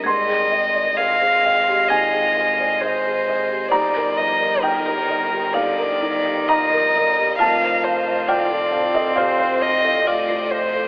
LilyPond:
<<
  \new Staff \with { instrumentName = "Felt piano" } { \time 4/4 \key aes \lydian \tempo 4 = 66 << { c'''2 aes''2 | bes''4 g''4 f''4 bes''4 | a''4 g''8 f''16 ees''16 f''2 | } \\ { aes,16 aes'16 ees''16 d''16 ees''16 aes'16 ees''16 g'16 ees16 aes'16 ees''16 d''16 ees''16 aes'16 ees''16 g'16 | g,16 bes'16 ees''16 d''16 ees''16 bes'16 ees''16 g'16 g,16 bes'16 ees'16 d''16 ees''16 bes'16 ees''16 g'16 | f,16 c''16 f''16 ees''16 f''16 c''8 a'16 c16 c''16 f''16 ees''16 f''16 c''16 f''16 a'16 | } >> }
  \new Staff \with { instrumentName = "Violin" } { \time 4/4 \key aes \lydian ees''4 f''4 ees''4 c''4 | d''8 ees''8 bes'4 d''4 ees''4 | f''8 c''8 d''4 c''8 ees''8 d''8 c''8 | }
  \new Staff \with { instrumentName = "Marimba" } { \time 4/4 \key aes \lydian aes'16 g''16 g''16 ees''16 aes'16 c''16 g''16 ees''16 aes'16 g''16 ees''16 c''16 aes'16 ees''16 ees''16 ees''16 | ees'16 d''16 d''16 bes'16 ees'16 g'16 d''16 bes'16 ees'16 d''16 bes'16 g'16 ees'16 bes'16 bes'16 bes'16 | f'16 f''16 f''16 c''16 f'16 a'16 f''16 c''16 f'16 f''16 c''16 a'16 f'16 c''16 c''16 c''16 | }
  \new Staff \with { instrumentName = "Cello" } { \clef bass \time 4/4 \key aes \lydian g8 aes8 aes2. | g8 f8 ees4 d8 ees8 f8 g8 | a4 c'2 a4 | }
  \new Staff \with { instrumentName = "Double bass" } { \clef bass \time 4/4 \key aes \lydian aes,,1 | g,,1 | f,,1 | }
>>